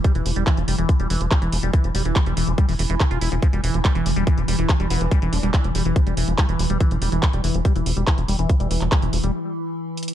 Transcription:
<<
  \new Staff \with { instrumentName = "Synth arpeggio sound" } { \time 4/4 \key e \phrygian \tempo 4 = 142 r1 | r1 | r2. r8 b8 | r8 d'16 d'16 r2. |
r1 | r1 | }
  \new Staff \with { instrumentName = "Acid bass" } { \clef bass \time 4/4 \key e \phrygian g16 e16 f16 g16 e16 f16 g16 e16 f16 g16 e16 f16 g16 e16 f16 g16 | e16 f16 g16 e16 f16 g16 e16 f16 g16 e16 e16 e16 d16 f'16 e'16 f16 | f16 g16 e16 f16 g16 e16 f16 g16 e16 f16 g16 e16 f16 g16 e16 f16 | g16 e16 f16 g16 e16 f16 g16 e16 f16 g16 e16 f16 g16 e16 f16 g16 |
e16 f16 g16 e16 f16 g16 e16 f16 g16 e16 f16 g16 e16 f16 g16 e16 | f16 g16 e16 f16 g16 e16 f16 g16 r2 | }
  \new Staff \with { instrumentName = "Ambient pad" } { \clef bass \time 4/4 \key e \phrygian e1~ | e1~ | e1~ | e1~ |
e1~ | e1 | }
  \new Staff \with { instrumentName = "Analog synth bass" } { \clef bass \time 4/4 \key e \phrygian r16 e,,16 e,,16 e,,16 r16 e,,16 f,,16 e,,16 r16 e,,16 e,,16 e,,16 r16 e,,16 e,,16 e,,16 | r16 e,,16 e,,16 e,,16 r16 e,,16 e,,16 e,,16 r16 e,,16 e,,16 e,,16 r16 e,,16 e,,16 e,,16 | r16 e,,16 e,,16 e,,16 r16 e,,16 f,,16 e,,16 r16 e,,16 e,,16 e,,16 r16 e,,16 e,,16 e,,16 | r16 e,,16 e,,16 e,,16 r16 e,,16 e,,16 e,,16 r16 e,,16 e,,16 e,,16 r16 e,,16 e,,16 e,,16 |
r16 e,,16 e,,16 e,,16 r16 e,,16 f,,16 e,,16 r16 e,,16 e,,16 e,,16 r16 e,,16 e,,16 e,,16 | r16 e,,16 e,,16 e,,16 r16 e,,16 e,,16 e,,16 r2 | }
  \new DrumStaff \with { instrumentName = "Drums" } \drummode { \time 4/4 <hh bd>16 hh16 hho16 hh16 <hc hh bd>16 hh16 hho16 hh16 <hh bd>16 hh16 hho16 hh16 <hc hh bd>16 hh16 hho16 hh16 | <hh bd>16 hh16 hho16 hh16 <hc hh bd>16 hh16 hho16 hh16 <hh bd>16 hho16 hho16 hh16 <hc hh bd>16 hh16 hho16 hh16 | <hh bd>16 hh16 hho16 hh16 <hc hh bd>16 hh16 hho16 hh16 <hh bd>16 hh16 hho16 hh16 <hc hh bd>16 hh16 hho16 hh16 | <hh bd>16 hh16 hho16 hh16 <hc hh bd>16 hh16 hho16 hh16 <hh bd>16 hh16 hho16 hh16 <hc hh bd>16 hh16 hho16 hh16 |
<hh bd>16 hh16 hho16 hh16 <hc hh bd>16 hh16 hho16 hh16 <hh bd>16 hh16 hho16 hh16 <hc hh bd>16 hh16 hho16 hh16 | <hh bd>16 hh16 hho16 <hc hh>16 <hc hh bd>16 hh16 hho16 hh16 r4 r8 hh32 hh32 hh16 | }
>>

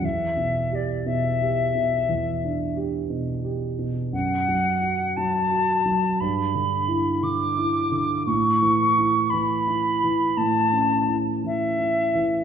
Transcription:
<<
  \new Staff \with { instrumentName = "Flute" } { \time 12/8 \key e \dorian \tempo 4. = 58 e''4 d''8 e''2~ e''8 r2 | fis''4. a''4. b''4. d'''4. | cis'''4. b''4. a''4 r8 e''4. | }
  \new Staff \with { instrumentName = "Grand piano" } { \clef bass \time 12/8 \key e \dorian e,8 b,8 g'8 b,8 g'8 b,8 e,8 d'8 g'8 b,8 g'8 b,8 | fis,8 fis8 fis'8 fis8 fis'8 fis8 g,8 d8 e'8 d8 e'8 d8 | a,8 e8 e'8 e8 e'8 e8 a,8 cis'8 e'8 e8 e'8 e8 | }
>>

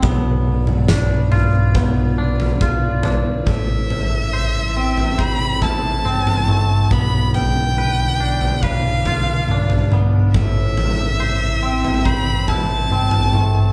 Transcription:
<<
  \new Staff \with { instrumentName = "Violin" } { \time 4/4 \key a \minor \tempo 4 = 70 r1 | e''2 b''8 a''4. | b''8 g''4. f''4. r8 | e''2 b''8 a''4. | }
  \new Staff \with { instrumentName = "Clean electric guitar" } { \time 4/4 \key a \minor b4 d'8 f'8 b8 d'8 f'8 d'8 | a,4 c''8 c'8 c''8 e'8 c'8 a8 | b4 b'8 d'8 b'8 f'8 d'8 b8 | a,4 c''8 c'8 c''8 e'8 c'8 a8 | }
  \new Staff \with { instrumentName = "Ambient pad" } { \time 4/4 \key a \minor <f' b' d'' b''>1 | <c e a e' a'>1 | <b, d f d' f'>1 | <a, c e c' e'>1 | }
  \new Staff \with { instrumentName = "Fingered electric bass" } { \clef bass \time 4/4 \key a \minor b,,1 | a,,1 | b,,1 | a,,1 | }
  \new DrumStaff \with { instrumentName = "Drums" } \drummode { \time 4/4 <bd tomfh>8. toml16 <bd sn tomfh toml>8 <tomfh toml>8 <bd tomfh>8. tomfh16 bd8 tomfh8 | <bd tomfh>8 tomfh8 r8. tomfh16 bd8 <bd tomfh>8 toml16 tomfh16 toml8 | <bd tomfh>8 tomfh8 r8. tomfh16 bd8 <bd tomfh>8 toml16 tomfh16 toml8 | <bd tomfh>8 tomfh8 r8. tomfh16 bd8 <bd tomfh>8 toml16 tomfh16 toml8 | }
>>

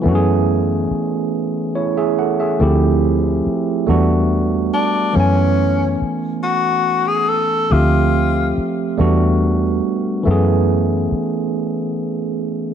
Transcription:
<<
  \new Staff \with { instrumentName = "Tenor saxophone" } { \time 6/8 \key e \dorian \tempo 4. = 47 r2. | r2 r8 d'8 | cis'4 r8 fis'8. gis'16 a'8 | f'4 r2 |
r2. | }
  \new Staff \with { instrumentName = "Tine electric piano" } { \time 6/8 \key e \dorian r2 <e' cis''>16 <gis' e''>16 <a' fis''>16 <gis' e''>16~ | <gis' e''>16 r2 r8. | r2. | r2. |
r2. | }
  \new Staff \with { instrumentName = "Tine electric piano" } { \time 6/8 \key e \dorian <e a b cis' fis' gis'>2. | <f a c' e' g'>4. <fis g a b d' fis'>4. | <e a b cis' gis''>2. | <f a c' g' e''>4. <g a b d' fis'>4. |
<e a b cis' gis'>2. | }
  \new Staff \with { instrumentName = "Fingered electric bass" } { \clef bass \time 6/8 \key e \dorian fis,4 r2 | d,4 r8 e,4 r8 | fis,4 r2 | d,4 r8 e,4 r8 |
fis,4 r2 | }
>>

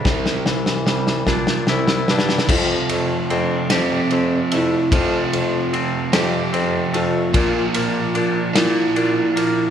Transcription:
<<
  \new Staff \with { instrumentName = "Electric slide guitar" } { \time 6/8 \key f \major \tempo 4. = 49 r2 r8 g'8 | f'4 d'8 c'4 e'8 | f'4 r8 g'4 f'8~ | f'4. e'4. | }
  \new Staff \with { instrumentName = "Clean electric guitar" } { \time 6/8 \key f \major c8 e8 g8 d'8 e'8 d'8 | f8 a8 c'8 g'8 c'8 a8 | f8 a8 c'8 g'8 c'8 a8 | bes,8 bes8 d'4 d'8 bes8 | }
  \new Staff \with { instrumentName = "Overdriven electric guitar" } { \clef bass \time 6/8 \key f \major <c g c'>8 <c g>8 <c g>8 <c g>8 <c g>8 <c g>8 | <f, c f a c'>4. <f, c f a c'>4. | <f, c f a c'>4. <f, c f a c'>4. | <bes, f bes d'>4. <bes, f bes d'>4. | }
  \new Staff \with { instrumentName = "Bassoon" } { \clef bass \time 6/8 \key f \major c,8 c,8 c,8 bes,8 c,8 g,8 | f,8 f,8 f,8 f,8 f,8 f,8 | f,8 f,8 r8 f,8 f,8 f,8 | bes,8 bes,8 bes,8 bes,8 bes,8 bes,8 | }
  \new DrumStaff \with { instrumentName = "Drums" } \drummode { \time 6/8 <bd sn>16 sn16 sn16 sn16 sn16 sn16 <bd sn>16 sn16 sn16 sn16 sn32 sn32 sn32 sn32 | <cymc bd>8 cymr8 cymr8 <cymr sn>8 cymr8 cymr8 | <bd cymr>8 cymr8 cymr8 <cymr sn>8 cymr8 cymr8 | <bd cymr>8 cymr8 cymr8 <cymr sn>8 cymr8 cymr8 | }
>>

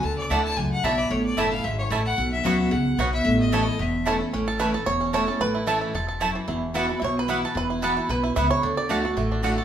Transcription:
<<
  \new Staff \with { instrumentName = "Fiddle" } { \time 4/4 \key a \major \tempo 4 = 223 a''8 d''8 fis''8 a''8 gis''8 fis''8 e''8 d''8 | cis''8 d''8 e''8 f''8 e''8 cis''8 r8 fis''8~ | fis''8 e''4. fis''4 r8 e''8~ | e''8 dis''4. e''4 r4 |
r1 | r1 | r1 | r1 |
r1 | }
  \new Staff \with { instrumentName = "Mandolin" } { \time 4/4 \key a \major r4 <a e' d'' a''>8 r4. <a e' d'' a''>8 r8 | r4 <a e' cis'' a''>8 r4. <a e' cis'' a''>8 r8 | r4 <b fis' cis'' fis''>8 r4. <b fis' cis'' fis''>8 r8 | r4 <a e' cis'' a''>8 r4. <a e' cis'' a''>8 r8 |
r4 <a e' cis'' a''>8 r4. <a e' cis'' a''>8 r8 | r4 <a e' cis'' a''>8 r4. <a e' cis'' a''>8 r8 | r4 <b e' b' fis''>8 r4. <b e' b' fis''>8 r8 | r4 <b e' b' fis''>8 r4. <b e' b' fis''>8 r8 |
r4 <a fis' d'' fis''>8 r4. <a fis' d'' fis''>8 r8 | }
  \new Staff \with { instrumentName = "Five-string banjo" } { \time 4/4 \key a \major << { r4 <a d' e'>8 r4. <a d' e'>8 r8 | r4 <a cis' e'>8 r4. <a cis' e'>8 r8 | r4 <b cis' fis'>8 r4. <b cis' fis'>8 r8 | r4 <a cis' e'>8 r4. <a cis' e'>8 r8 |
r8 a'8 b'8 a'8 cis''4 cis''4 | b'4 a'4 a'4. r8 | r4. r16. e''32 cis''8 b'4 a'8 | b'4 a'4 b'4 e''8 cis''8~ |
cis''8 d''8 a'4. r4. | } \\ { r1 | r1 | r1 | r1 |
cis'4. r4 cis'4 a'8~ | a'8 e'4 e'4 a'8 e'8 e8 | e'4 a'8 e'4. e'4~ | e'8 e'4 e'4 e'4. |
d'4. fis'8 a8 d'8 a8 a'8 | } >> }
  \new Staff \with { instrumentName = "Steel-string acoustic guitar" } { \time 4/4 \key a \major << { r4 <d a d' e'>4 r2 | r4 <e a cis' e'>8 <cis' e'>8 r2 | r4 <fis b cis' fis'>4 r2 | r4 <e a cis' e'>8 <cis' e'>8 r4 <e a cis' e'>8 <cis' e'>8 |
r4 <e a cis' e'>8 <cis' e'>8 r4 <e a cis' e'>8 <cis' e'>8 | r4 <e a cis' e'>4 r2 | r4 <e b e' fis'>8 <e' fis'>8 r4 <e b e' fis'>8 <e' fis'>8 | r4 <e b e' fis'>8 <e' fis'>8 r2 |
r4 <d a d' fis'>8 <d' fis'>8 r4 <d a d' fis'>8 <d' fis'>8 | } \\ { d2 fis,4 b,4 | a,2 gis,4 a,4 | b,2 cis4 b,4 | a,2 e,2 |
a,2 e,2 | a,2 gis,4 fis,4 | e,2 b,2 | e,2 b,4 cis4 |
d2 a,2 | } >> }
  \new Staff \with { instrumentName = "Upright bass" } { \clef bass \time 4/4 \key a \major d,4 d,4 cis,4 b,,4 | a,,4 fis,,4 gis,,4 a,,4 | b,,4 d,4 cis,4 b,,4 | a,,2 e,,2 |
a,,2 e,,2 | a,,2 e,,2 | e,,2 b,,2 | e,,2 b,,4 cis,4 |
d,2 a,,2 | }
>>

